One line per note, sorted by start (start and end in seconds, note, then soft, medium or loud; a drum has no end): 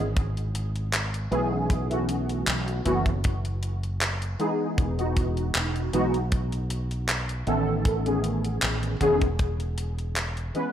0.00 1.27 G#1 loud
0.16 kick loud
0.16 closed hi-hat loud
0.37 closed hi-hat soft
0.55 closed hi-hat medium
0.76 closed hi-hat soft
0.93 clap loud
0.93 closed hi-hat loud
1.14 closed hi-hat soft
1.31 2.42 B1 loud
1.31 1.85 E3 medium
1.31 1.86 A3 medium
1.31 1.86 B3 medium
1.31 1.86 C#4 medium
1.31 1.86 G#4 loud
1.31 closed hi-hat soft
1.70 kick loud
1.70 closed hi-hat medium
1.90 2.81 E3 medium
1.90 2.81 A3 medium
1.90 2.81 B3 medium
1.90 2.82 C#4 medium
1.90 2.82 F#4 medium
1.90 closed hi-hat soft
2.09 closed hi-hat medium
2.29 closed hi-hat soft
2.47 2.80 B1 medium
2.47 clap loud
2.47 closed hi-hat loud
2.68 closed hi-hat soft
2.85 4.35 F#1 loud
2.85 3.08 E3 loud
2.85 3.08 A3 medium
2.85 3.09 B3 medium
2.85 3.09 C#4 medium
2.85 3.09 F#4 loud
2.85 kick medium
2.85 closed hi-hat medium
3.06 kick loud
3.06 closed hi-hat soft
3.24 kick loud
3.24 closed hi-hat loud
3.45 closed hi-hat soft
3.63 closed hi-hat medium
3.83 closed hi-hat soft
4.01 clap loud
4.01 closed hi-hat medium
4.22 closed hi-hat soft
4.39 4.93 E3 medium
4.39 4.94 G#3 medium
4.39 4.94 B3 medium
4.39 4.94 D#4 medium
4.39 4.94 G#4 loud
4.39 closed hi-hat soft
4.78 5.50 E1 loud
4.78 kick loud
4.78 closed hi-hat medium
4.97 5.88 E3 medium
4.97 5.89 G#3 medium
4.97 5.89 B3 medium
4.97 5.90 D#4 medium
4.97 5.90 F#4 medium
4.97 closed hi-hat soft
5.17 kick loud
5.17 closed hi-hat medium
5.37 closed hi-hat soft
5.55 5.87 E1 medium
5.55 clap loud
5.55 closed hi-hat medium
5.76 closed hi-hat soft
5.93 7.42 B1 loud
5.93 6.16 E3 loud
5.93 6.16 G#3 medium
5.93 6.16 B3 medium
5.93 6.16 D#4 medium
5.93 6.17 F#4 loud
5.93 closed hi-hat medium
6.14 closed hi-hat soft
6.32 kick loud
6.32 closed hi-hat medium
6.52 closed hi-hat soft
6.70 closed hi-hat medium
6.91 closed hi-hat soft
7.09 clap loud
7.09 closed hi-hat medium
7.29 closed hi-hat soft
7.46 8.58 A1 loud
7.46 8.01 D#3 medium
7.46 8.01 A3 medium
7.46 8.01 B3 medium
7.46 8.02 C#4 medium
7.46 8.02 A4 loud
7.46 closed hi-hat soft
7.85 kick loud
7.85 closed hi-hat medium
8.05 8.96 D#3 medium
8.05 8.96 A3 medium
8.05 8.97 B3 medium
8.05 8.97 C#4 medium
8.05 8.97 G#4 medium
8.05 closed hi-hat soft
8.24 closed hi-hat medium
8.45 closed hi-hat soft
8.62 8.95 A1 medium
8.62 clap loud
8.62 closed hi-hat loud
8.83 closed hi-hat soft
9.00 10.50 E1 medium
9.00 9.24 D#3 loud
9.00 9.24 A3 medium
9.00 9.24 B3 medium
9.00 9.24 C#4 medium
9.00 9.24 G#4 loud
9.00 kick medium
9.00 closed hi-hat medium
9.21 kick loud
9.21 closed hi-hat soft
9.39 kick loud
9.39 closed hi-hat medium
9.60 closed hi-hat soft
9.78 closed hi-hat medium
9.99 closed hi-hat soft
10.16 clap loud
10.16 closed hi-hat medium
10.37 closed hi-hat soft
10.54 10.72 E3 medium
10.54 10.72 G#3 medium
10.54 10.72 B3 medium
10.54 10.72 C#4 medium
10.54 10.72 B4 loud
10.54 closed hi-hat soft